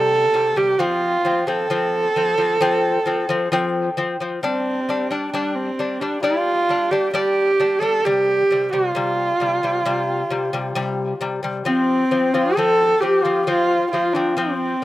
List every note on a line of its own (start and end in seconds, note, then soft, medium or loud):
0.00 0.25 C3 medium
0.00 0.26 G3 loud
0.00 0.59 A4 loud
0.34 0.52 C3 medium
0.34 0.53 G3 medium
0.56 0.75 C3 medium
0.56 0.75 G3 medium
0.56 0.82 G4 loud
0.79 1.16 F3 medium
0.79 1.16 C4 loud
0.79 1.49 F4 loud
1.25 1.43 F3 medium
1.25 1.44 C4 medium
1.47 1.66 F3 medium
1.47 1.66 C4 medium
1.47 3.97 A4 medium
1.70 2.07 F3 medium
1.70 2.07 C4 medium
2.16 2.34 F3 medium
2.16 2.35 C4 medium
2.38 2.56 F3 medium
2.38 2.57 C4 medium
2.61 2.97 F3 loud
2.61 2.98 C4 loud
3.06 3.24 F3 medium
3.06 3.25 C4 medium
3.29 3.47 F3 medium
3.29 3.48 C4 medium
3.52 3.88 F3 loud
3.52 3.89 C4 loud
3.97 4.15 F3 medium
3.97 4.16 C4 medium
4.20 4.38 F3 medium
4.20 4.39 C4 medium
4.43 4.79 G3 medium
4.43 5.13 C4 medium
4.43 4.80 D4 medium
4.89 5.07 G3 medium
4.89 5.07 D4 medium
5.11 5.29 G3 medium
5.11 5.32 D4 medium
5.11 5.29 D4 medium
5.32 5.70 G3 medium
5.32 5.57 D4 medium
5.32 5.70 D4 medium
5.56 6.02 C4 medium
5.79 5.97 G3 medium
5.79 5.97 D4 medium
6.00 6.19 G3 medium
6.00 6.22 D4 medium
6.00 6.20 D4 medium
6.23 6.60 G3 medium
6.23 6.60 D4 medium
6.23 6.93 F4 loud
6.69 6.87 G3 medium
6.69 6.88 D4 medium
6.91 7.10 G3 medium
6.91 7.10 D4 medium
6.91 7.13 G4 medium
7.14 7.50 G3 medium
7.14 7.51 D4 loud
7.14 7.82 G4 loud
7.60 7.78 G3 medium
7.60 7.78 D4 medium
7.80 8.00 G3 medium
7.80 8.01 D4 medium
7.80 8.07 A4 loud
8.05 8.41 C3 medium
8.05 8.42 G3 loud
8.05 8.74 G4 loud
8.51 8.69 C3 medium
8.51 8.69 G3 medium
8.73 8.91 C3 medium
8.73 8.91 G3 medium
8.73 11.22 F4 medium
8.95 9.31 C3 medium
8.95 9.32 G3 medium
9.40 9.59 C3 medium
9.40 9.59 G3 medium
9.63 9.81 C3 medium
9.63 9.82 G3 medium
9.85 10.22 C3 medium
9.85 10.22 G3 loud
10.30 10.49 C3 medium
10.30 10.50 G3 medium
10.53 10.72 C3 medium
10.53 10.72 G3 medium
10.75 11.12 C3 loud
10.75 11.13 G3 loud
11.21 11.39 C3 medium
11.21 11.40 G3 medium
11.43 11.62 C3 medium
11.43 11.62 G3 medium
11.65 12.02 F3 medium
11.65 12.36 C4 medium
11.65 12.03 C4 medium
11.65 12.58 C4 medium
12.11 12.30 F3 medium
12.11 12.30 C4 medium
12.34 12.53 F3 medium
12.34 12.53 C4 medium
12.34 12.58 F4 medium
12.56 12.94 F3 medium
12.56 12.94 C4 medium
12.56 13.02 A4 loud
12.56 13.04 A4 medium
13.01 13.20 F3 medium
13.01 13.21 C4 medium
13.01 13.25 G4 medium
13.01 13.50 G4 medium
13.24 13.43 F3 medium
13.24 13.43 C4 medium
13.24 13.46 F4 medium
13.47 13.84 F3 medium
13.47 13.84 C4 medium
13.47 13.89 F4 medium
13.47 13.93 F4 medium
13.91 14.11 F3 medium
13.91 14.12 C4 medium
13.91 14.15 F4 medium
13.91 13.97 G4 medium
13.96 14.40 F4 medium
14.14 14.33 F3 medium
14.14 14.34 C4 medium
14.14 14.31 D4 medium
14.31 14.38 D4 medium
14.36 14.74 F3 medium
14.36 14.84 C4 medium
14.36 14.74 C4 medium
14.36 14.84 C4 medium